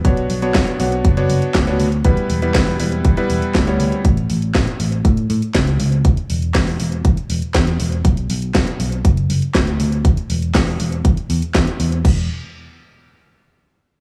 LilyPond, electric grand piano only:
\new Staff \with { instrumentName = "Electric grand piano" } { \time 4/4 \key b \minor \tempo 4 = 120 <b d' fis' cis''>8. <b d' fis' cis''>8. <b d' fis' cis''>8. <b d' fis' cis''>4 <b d' fis' cis''>8 r16 | <g b e' b'>8. <g b e' b'>8. <g b e' b'>8. <g b e' b'>4 <g b e' cis''>8. | r1 | r1 |
r1 | r1 | r1 | }